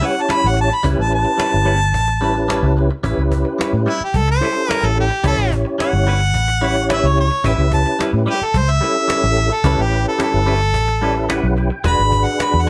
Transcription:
0.01 clean electric guitar G3 C#4 E4 B4, tonewheel organ C#4 E4 G4 C#5
0.06 harmonica F#5
0.15 muted clean electric guitar stroke
0.21 harmonica A5
0.29 clean electric guitar G3 C#4 E4 B4, cajon slap
0.34 harmonica B5
0.44 fingered electric bass A1, harmonica F#5
0.56 muted clean electric guitar stroke
0.61 harmonica A5
0.70 muted clean electric guitar stroke
0.74 harmonica B5
0.83 fingered electric bass C#2, clean electric guitar G3 C#4 E4 B4, tonewheel organ C#4 E4 G4 B4, cajon bass
0.99 fingered electric bass A1, harmonica A5
1.11 muted clean electric guitar stroke, cajon slap
1.15 harmonica A5
1.25 muted clean electric guitar stroke
1.38 clean electric guitar G3 C#4 E4 B4, cajon slap
1.52 fingered electric bass G1, muted clean electric guitar stroke
1.65 clean electric guitar G3 C#4 E4 B4
1.80 muted clean electric guitar stroke, cajon slap
1.94 fingered electric bass A1, cajon bass
2.08 muted clean electric guitar stroke
2.21 clean electric guitar G3 C#4 E4 B4, tonewheel organ C#4 E4 G4 B4, cajon slap
2.35 muted clean electric guitar stroke, cajon slap
2.48 clean electric guitar G3 C#4 E4 B4, cajon slap
2.63 fingered electric bass C#2
2.77 muted clean electric guitar stroke, cajon slap
2.91 muted clean electric guitar stroke
3.03 fingered electric bass A1, clean electric guitar G3 C#4 E4 B4, tonewheel organ C#4 E4 G4 B4, cajon bass
3.17 fingered electric bass C#2
3.32 muted clean electric guitar stroke, cajon bass
3.45 muted clean electric guitar stroke
3.59 clean electric guitar G3 C#4 E4 B4, cajon slap
3.73 fingered electric bass A2, muted clean electric guitar stroke
3.86 clean electric guitar G3 C#4 E4 B4, harmonica E4, cajon slap
4.01 harmonica G4, muted fingered electric bass stroke, muted clean electric guitar stroke, cajon slap
4.14 fingered electric bass C#2, harmonica A4, cajon bass
4.28 harmonica C5, muted clean electric guitar stroke
4.40 clean electric guitar G3 C#4 E4, tonewheel organ C#4 E4 G4 A4
4.45 clean electric guitar B4
4.55 muted clean electric guitar stroke
4.69 clean electric guitar G3 C#4 E4 B4, harmonica A#4, cajon slap
4.83 fingered electric bass A1, harmonica A4
4.96 harmonica G4, muted clean electric guitar stroke, cajon slap
5.10 muted clean electric guitar stroke
5.23 fingered electric bass C#2, clean electric guitar G3 C#4 E4 B4, tonewheel organ C#4 E4 G4 C#5, cajon bass
5.27 harmonica A4
5.38 fingered electric bass A1
5.51 muted clean electric guitar stroke, cajon bass
5.65 muted clean electric guitar stroke
5.78 clean electric guitar G3 C#4 E4 B4, cajon slap
5.82 harmonica F#5
5.93 fingered electric bass G1, muted clean electric guitar stroke
6.07 clean electric guitar G3 C#4 E4 B4
6.21 muted clean electric guitar stroke
6.34 fingered electric bass A1, cajon bass
6.48 muted clean electric guitar stroke
6.61 clean electric guitar G3 C#4 E4 B4, tonewheel organ C#4 E4 G4 C#5
6.76 muted clean electric guitar stroke
6.89 clean electric guitar G3 C#4 E4 B4, harmonica E5, cajon slap
7.03 fingered electric bass C#2, harmonica C#5
7.17 harmonica C#5, muted clean electric guitar stroke, cajon slap
7.31 muted clean electric guitar stroke
7.44 fingered electric bass A1, clean electric guitar G3 C#4 E4 B4, tonewheel organ C#4 E4 G4 B4, harmonica E5, cajon bass
7.58 fingered electric bass C#2
7.72 harmonica A5, muted clean electric guitar stroke, cajon bass
7.86 muted clean electric guitar stroke
7.99 clean electric guitar G3 C#4 E4 B4, cajon slap
8.13 fingered electric bass A2, muted clean electric guitar stroke
8.26 clean electric guitar G3 C#4 E4 B4, cajon slap
8.31 harmonica G4
8.41 harmonica A4, muted clean electric guitar stroke, muted fingered electric bass stroke
8.54 fingered electric bass C#2, harmonica C5, cajon bass, cajon slap
8.68 harmonica E5, muted clean electric guitar stroke
8.81 clean electric guitar G3 C#4 E4 B4, tonewheel organ C#4 E4 G4 A4
8.95 muted clean electric guitar stroke
9.08 clean electric guitar G3 C#4 E4 B4, cajon slap
9.24 fingered electric bass A1
9.36 muted clean electric guitar stroke
9.50 muted clean electric guitar stroke
9.54 harmonica A4
9.64 fingered electric bass C#2, clean electric guitar G3 C#4 E4 B4, tonewheel organ C#4 E4 G4 B4, cajon bass
9.79 fingered electric bass A1, harmonica G4
9.91 muted clean electric guitar stroke, cajon slap
10.05 harmonica A4, muted clean electric guitar stroke
10.19 clean electric guitar G3 C#4 E4 B4, cajon slap
10.23 harmonica A4
10.33 fingered electric bass G1, muted clean electric guitar stroke
10.46 clean electric guitar G3 C#4 E4 B4, cajon slap
10.60 muted clean electric guitar stroke
10.74 fingered electric bass A1, cajon bass
10.88 muted clean electric guitar stroke
11.01 clean electric guitar G3 C#4 E4 B4, tonewheel organ C#4 E4 G4 B4 D5, cajon slap
11.15 tonewheel organ E5, muted clean electric guitar stroke
11.29 clean electric guitar G3 C#4 E4 B4, tonewheel organ F#5, cajon slap
11.44 fingered electric bass B1
11.57 tonewheel organ G5, muted clean electric guitar stroke, cajon slap
11.70 muted clean electric guitar stroke
11.84 fingered electric bass E1, clean electric guitar G#3 D4 F#4 B4, tonewheel organ D4 F#4 G#4 B4, cajon bass
11.88 harmonica B5
11.99 fingered electric bass G#1
12.12 muted clean electric guitar stroke, cajon bass
12.24 harmonica F#5, muted clean electric guitar stroke
12.39 clean electric guitar G#3 D4 F#4 B4, cajon slap
12.44 harmonica B5
12.53 fingered electric bass E2, muted clean electric guitar stroke
12.62 harmonica F#5

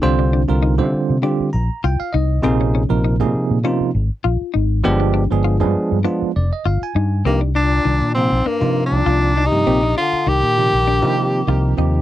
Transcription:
0.02 fingered electric bass C2, tine electric piano D3 G3 C4 F4 C5, clean electric guitar C4
0.19 clean electric guitar D4
0.33 clean electric guitar D4
0.48 fingered electric bass C2, tine electric piano D3 G3 C4 F4 A#4
0.63 clean electric guitar D#4
0.78 fingered electric bass C3, tine electric piano D3 G3 C4 F4 C5
0.94 muted fingered electric bass stroke
1.10 fingered electric bass C3
1.22 tine electric piano D3 G3 C4 F4 G4, clean electric guitar D4
1.40 muted fingered electric bass stroke
1.53 fingered electric bass A#1, tine electric piano F4 A#4 A#5
1.84 fingered electric bass C2, clean electric guitar F4, tine electric piano G5
2.00 tine electric piano F5, muted fingered electric bass stroke
2.13 fingered electric bass C2, clean electric guitar D#4, tine electric piano D#5
2.42 fingered electric bass A#1, tine electric piano C3 F3 A#3 D#4 G#4, clean electric guitar C4
2.61 clean electric guitar C#4
2.75 clean electric guitar C#4
2.89 fingered electric bass A#1, tine electric piano C3 F3 A#3 D#4 A#4
3.04 clean electric guitar D#4
3.20 fingered electric bass A#2, tine electric piano C3 F3 A#3 D#4 G#4
3.35 muted fingered electric bass stroke
3.51 fingered electric bass A#2
3.64 tine electric piano C3 F3 A#3 D#4 F4, clean electric guitar C#4
3.80 muted fingered electric bass stroke
3.94 fingered electric bass G#1, tine electric piano D#4 G#4
4.24 fingered electric bass A#1, clean electric guitar F4
4.41 muted fingered electric bass stroke
4.54 fingered electric bass G#1, clean electric guitar D#4
4.84 fingered electric bass G1, tine electric piano F3 G#3 B3 D4 G4, clean electric guitar B3
5.00 clean electric guitar D4
5.14 clean electric guitar D4
5.31 fingered electric bass G1, tine electric piano F3 G#3 B3 D4 G#4
5.44 clean electric guitar F4
5.60 fingered electric bass G2, tine electric piano F3 G#3 B3 D4 G#4
5.76 muted fingered electric bass stroke
5.92 fingered electric bass G2
6.04 tine electric piano F3 G#3 B3 D4 F4, clean electric guitar D4
6.22 muted fingered electric bass stroke
6.35 fingered electric bass F1, tine electric piano D4 G#4 D5
6.53 tine electric piano D#5
6.65 fingered electric bass G1, clean electric guitar F4, tine electric piano F5
6.82 tine electric piano G#5, muted fingered electric bass stroke
6.95 fingered electric bass G2, clean electric guitar D#4
7.25 fingered electric bass C2, bass clarinet G2, tine electric piano C3 F3 A#3 D#4 G4, tenor saxophone A#3, clean electric guitar C4
7.41 clean electric guitar D4, tine electric piano D#4 G4
7.55 bass clarinet A#2, clean electric guitar D4, tenor saxophone D4
7.85 fingered electric bass C2, clean electric guitar D#3
8.01 fingered electric bass A#2
8.14 bass clarinet G#2, tine electric piano C3 F3 A#3 D#4 F4, tenor saxophone C4
8.32 fingered electric bass A#1, tine electric piano D#4 F4
8.45 bass clarinet G2, tenor saxophone A#3, clean electric guitar D4, muted fingered electric bass stroke
8.61 tine electric piano C3 F3 A#3 D#4 F4, fingered electric bass C3
8.86 bass clarinet A#2, tenor saxophone D4
8.92 fingered electric bass C2
9.06 fingered electric bass C2, tine electric piano C3 F3 A#3 D#4 F4, clean electric guitar F4
9.36 clean electric guitar D#4, tine electric piano A#4
9.46 bass clarinet C3, tenor saxophone D#4
9.51 fingered electric bass G2, tine electric piano C3 F3 A#3 D#4 G4
9.66 fingered electric bass A#1, tine electric piano C3 F3 A#3 D#4 G4, clean electric guitar C4
9.83 clean electric guitar D4, tine electric piano D#4 G4
9.97 bass clarinet D3, clean electric guitar D4, tenor saxophone F4
10.13 muted fingered electric bass stroke
10.27 fingered electric bass C2, bass clarinet D#3, clean electric guitar D#4, tenor saxophone G4
10.43 fingered electric bass A#2
10.57 tine electric piano C3 F3 A#3 D#4 G4
10.73 fingered electric bass A#1, tine electric piano D#4 G4
10.87 clean electric guitar D4
11.02 tine electric piano C3 F3 A#3 D#4 G4, fingered electric bass C3
11.47 fingered electric bass C2, tine electric piano C3 F3 A#3 D#4 A#4, clean electric guitar F4
11.77 fingered electric bass D#2, tine electric piano C3 F3 A#3 D#4 G4, clean electric guitar D#4

